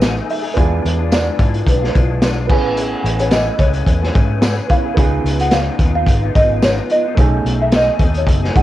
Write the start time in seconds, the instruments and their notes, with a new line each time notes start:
Already playing: fingered electric bass A1, upright piano A3 C#4 D#4 G#4, marimba B4
0.01 clean electric guitar B2 A3 D#4 G#4, snare, closed hi-hat, tambourine
0.16 clean electric guitar A3 D#4 G#4
0.30 marimba E5, open hi-hat
0.43 clean electric guitar A3 D#4 G#4
0.54 fingered electric bass E2, clean electric guitar E3 G#3 D4 F4, upright piano B3 D4 F4, kick, closed hi-hat
0.59 upright piano G#4
0.85 fingered electric bass E2, closed hi-hat
0.98 clean electric guitar G#3 D4 F4
1.11 clean electric guitar E3 G#3 D4 F4, marimba D5, snare, closed hi-hat, tambourine
1.38 fingered electric bass G#2, clean electric guitar E3 G#3 D4 F4, kick, closed hi-hat
1.54 closed hi-hat
1.66 fingered electric bass B1, marimba B4, kick, closed hi-hat
1.81 clean electric guitar G#3 D4 F4, snare
1.94 fingered electric bass B1, clean electric guitar E3 G#3 D4 F4, kick, closed hi-hat
2.22 clean electric guitar E3 G#3 D4 F4, snare, closed hi-hat, tambourine
2.37 clean electric guitar G#3 D4 F4
2.47 fingered electric bass A1, clean electric guitar A3 C#4 G#4 B4, upright piano B3 C#4 E4, marimba B4, kick, crash
2.52 upright piano G#4
2.77 closed hi-hat
3.04 fingered electric bass A1, closed hi-hat
3.19 clean electric guitar C#4 G#4 B4, marimba C#5, closed hi-hat
3.31 clean electric guitar A3 C#4 G#4 B4, marimba D#5, snare, closed hi-hat, tambourine
3.59 fingered electric bass C#2, clean electric guitar A3 C#4 G#4 B4, marimba C#5, kick, closed hi-hat
3.73 closed hi-hat
3.86 fingered electric bass E2, kick, closed hi-hat
4.01 clean electric guitar C#4 G#4 B4, snare
4.14 fingered electric bass G#2, clean electric guitar A3 C#4 G#4 B4, kick, closed hi-hat
4.41 clean electric guitar A3 C#4 G#4 B4, snare, closed hi-hat, tambourine
4.56 clean electric guitar C#4 G#4 B4
4.69 upright piano B3 C#4 E4 B4, marimba F5, kick, closed hi-hat
4.83 clean electric guitar C#4 G#4 B4
4.95 fingered electric bass C#2, clean electric guitar C#3 B3 D#4 F4, upright piano B3 D#4 F4, kick, closed hi-hat
5.00 upright piano G#4
5.24 fingered electric bass C#2, closed hi-hat
5.38 clean electric guitar B3 D#4 F4, marimba F#5, closed hi-hat
5.51 clean electric guitar C#3 B3 D#4 F4, marimba F5, snare, closed hi-hat, tambourine
5.78 fingered electric bass D#2, clean electric guitar C#3 B3 D#4 F4, kick, closed hi-hat
5.94 clean electric guitar B3 D#4 F4, marimba F5
6.06 fingered electric bass G#1, kick, closed hi-hat
6.22 clean electric guitar B3 D#4 F4
6.34 fingered electric bass G#1, clean electric guitar C#3 B3 D#4 F4, marimba D#5, kick, closed hi-hat
6.62 clean electric guitar C#3 B3 D#4 F4, marimba C#5, snare, closed hi-hat, tambourine
6.77 clean electric guitar B3 D#4 F4
6.90 marimba D#5, closed hi-hat
7.05 clean electric guitar B3 D#4 F4
7.14 fingered electric bass B1, clean electric guitar B2 A3 D#4, upright piano A3 C#4 D#4, kick, closed hi-hat
7.19 clean electric guitar G#4, upright piano G#4
7.44 fingered electric bass B1, closed hi-hat
7.59 clean electric guitar A3 D#4 G#4, marimba E5
7.72 clean electric guitar B2 A3 D#4 G#4, marimba D#5, snare, closed hi-hat, tambourine
7.99 fingered electric bass D#2, clean electric guitar B2 A3 D#4 G#4, kick, closed hi-hat
8.14 marimba C#5, closed hi-hat
8.26 fingered electric bass F#1, kick, closed hi-hat
8.42 clean electric guitar A3 D#4 G#4, snare
8.53 fingered electric bass A1, clean electric guitar B2 A3 D#4 G#4, upright piano A3 C#4 D#4 G#4, marimba F#5, kick, closed hi-hat